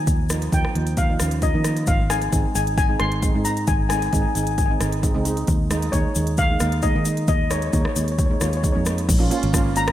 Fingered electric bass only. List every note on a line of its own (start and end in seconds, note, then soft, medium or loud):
0.07 0.50 D#2 loud
0.53 0.64 D#2 medium
0.75 1.18 D#2 medium
1.21 1.53 D#2 medium
1.55 1.86 D#3 medium
1.88 2.30 G#1 medium
2.33 2.44 G#1 medium
2.55 2.98 G#1 medium
3.01 3.33 G#1 medium
3.35 3.66 G#2 medium
3.68 4.11 G#1 medium
4.13 4.24 G#1 medium
4.35 4.78 G#1 medium
4.81 5.13 G#1 medium
5.15 5.46 C#2 medium
5.48 5.91 D#2 medium
5.93 6.04 D#2 medium
6.16 6.58 D#2 medium
6.61 6.93 D#2 medium
6.96 7.27 D#3 medium
7.28 7.71 D#2 loud
7.73 7.84 D#2 medium
7.96 8.39 D#2 medium
8.41 8.73 D#2 medium
8.76 9.07 F2 medium
9.09 9.30 A#1 loud
9.43 9.92 G#1 loud